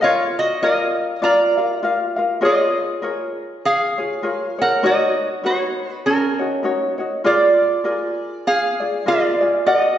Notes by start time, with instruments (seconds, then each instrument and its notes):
0.01 resonator guitar played with a steel bar F4 C#5, ukulele A#4 D#5 F5
0.39 resonator guitar played with a steel bar F#4 D#5
0.62 ukulele F4 A#4 D#5 F5, resonator guitar played with a steel bar A#4 D#5
1.22 ukulele F4 A#4 D5 F5, resonator guitar played with a steel bar D5 A#5
1.57 ukulele F4 A#4 F5
1.82 ukulele F4 A#4 D5 F5
2.16 ukulele F4 A#4 F5
2.41 ukulele F4 G#4 A#4 C#5, resonator guitar played with a steel bar G#4
2.46 resonator guitar played with a steel bar D#5
3.02 ukulele F4 G#4 A#4 C#5
3.65 resonator guitar played with a steel bar G#4 F5
3.98 ukulele F4 G#4 C#5
4.23 ukulele F4 G#4 A#4 C#5
4.58 ukulele G#4 C#5, resonator guitar played with a steel bar A#4 F#5
4.83 ukulele D#4 F#4 A#4 C#5, resonator guitar played with a steel bar F#4 D#5
5.43 ukulele D#4 F#4 A#4 C#5, resonator guitar played with a steel bar F#4 C#5
5.93 resonator guitar played with a steel bar B4
6.06 resonator guitar played with a steel bar C#4 A#4
6.39 ukulele D#4 F#4 C#5
6.63 ukulele D#4 F#4 A#4 C#5
6.98 ukulele D#4 F#4 C#5
7.24 ukulele F4 G#4 A#4 D5, resonator guitar played with a steel bar F4 D5
7.84 ukulele F4 G#4 A#4 D5
8.47 resonator guitar played with a steel bar G#4 F5
8.80 ukulele F4 G#4 D5
9.06 ukulele F4 G#4 A#4 D5, resonator guitar played with a steel bar F4 D5
9.41 ukulele F4 G#4 D5
9.66 ukulele F#4 A#4 D#5 F#5, resonator guitar played with a steel bar D#5 F#5